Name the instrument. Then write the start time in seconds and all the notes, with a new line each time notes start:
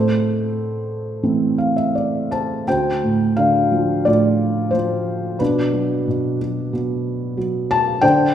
felt piano
Already playing: A2 A4 C5
1.23 E3 A3 C4
1.58 F5
1.76 E5
1.95 D5
2.31 C5 A5
2.68 D2 C5 G5
3.03 A2
3.37 D3 F5
3.72 F3
4.05 A2 F4 D5
4.71 F3 C5
5.39 B2 D4 B4
5.73 F#3
6.08 B2
6.41 F#3
6.73 B2
7.37 F#3
7.71 A5
8.01 D3 C5 G5